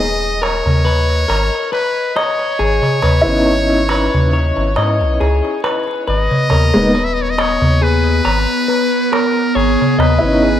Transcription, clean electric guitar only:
0.00 0.38 G#4 medium
0.42 0.82 A#4 medium
0.85 1.25 B4 medium
1.28 1.70 A#4 medium
1.72 2.12 B4 medium
2.16 2.58 D#5 medium
2.59 2.99 G#4 medium
3.03 3.43 B4 medium
3.47 3.86 C#5 medium
3.90 4.32 B4 medium
4.33 4.73 C#5 medium
4.77 5.19 D#5 medium
5.20 5.60 G#4 medium
5.64 6.04 B4 medium
6.07 6.47 B4 medium
6.51 6.93 A#4 medium
6.95 7.34 B4 medium
7.38 7.80 D#5 medium
7.82 8.21 G#4 medium
8.25 8.64 A#5 medium
8.68 9.08 B4 medium
9.12 9.54 A#4 medium
9.55 9.95 C#5 medium
9.99 10.40 D#5 medium
10.42 10.60 G#4 medium

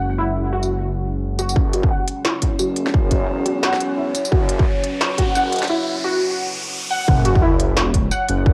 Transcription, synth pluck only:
0.18 0.51 E4 medium
0.53 1.20 F#4 medium
1.39 1.50 F#4 medium
1.73 1.89 F#4 medium
1.91 2.02 F#5 medium
2.25 2.58 E4 medium
2.59 3.27 F#4 medium
3.46 3.62 F#4 medium
3.63 3.74 F#5 medium
3.97 4.30 E4 medium
4.32 4.99 F#4 medium
5.18 5.34 F#4 medium
5.35 5.47 F#5 medium
5.70 6.03 E4 medium
6.04 6.72 F#4 medium
6.91 7.02 F#5 medium
7.25 7.42 F#4 medium
7.42 7.53 E4 loud
8.11 8.23 F#5 medium

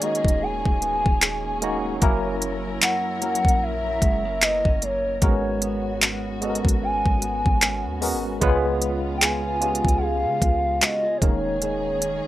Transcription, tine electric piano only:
0.00 0.02 G#3 medium
0.00 1.20 G#3 medium
0.00 0.02 A#3 medium
0.00 1.20 A#3 medium
0.00 0.03 C#4 medium
0.00 1.20 C#4 medium
0.00 0.03 D#4 medium
0.00 1.21 D#4 medium
0.00 1.21 F#4 medium
0.00 2.03 A#4 medium
1.62 1.93 G#3 medium
1.62 1.93 A#3 medium
1.62 1.93 C#4 medium
1.62 1.94 D#4 medium
1.62 1.94 F#4 loud
2.02 2.92 F#3 loud
2.02 2.92 A#3 loud
2.02 2.92 C#4 loud
2.02 2.92 E4 loud
2.02 2.93 A#4 loud
3.22 4.40 F#3 medium
3.22 4.40 A#3 medium
3.22 4.40 C#4 medium
3.22 4.41 E4 medium
3.22 4.41 A#4 medium
5.22 6.12 G#3 medium
5.22 5.29 A#3 medium
5.22 6.12 C#4 medium
5.22 6.12 F#4 medium
5.22 6.12 A#4 loud
5.29 6.15 B3 medium
6.41 7.60 G#3 medium
6.41 7.60 B3 medium
6.41 7.60 C#4 medium
6.41 7.61 F#4 medium
6.41 6.50 A4 medium
6.50 7.64 A#4 medium
8.01 8.33 G#3 medium
8.01 8.33 B3 medium
8.01 8.33 C#4 medium
8.01 8.33 F#4 medium
8.01 8.34 A#4 loud
8.41 9.31 G#3 loud
8.41 9.32 B3 loud
8.41 9.32 C#4 loud
8.41 9.32 F4 loud
8.41 9.32 B4 loud
9.61 10.80 G#3 medium
9.61 10.80 B3 medium
9.61 10.80 C#4 medium
9.61 10.80 F4 medium
9.61 9.70 G4 medium
9.70 10.84 G#4 medium
11.22 12.27 G#3 medium
11.22 12.27 A#3 medium
11.22 12.27 C#4 medium
11.22 12.27 D#4 medium
11.22 12.27 A#4 medium

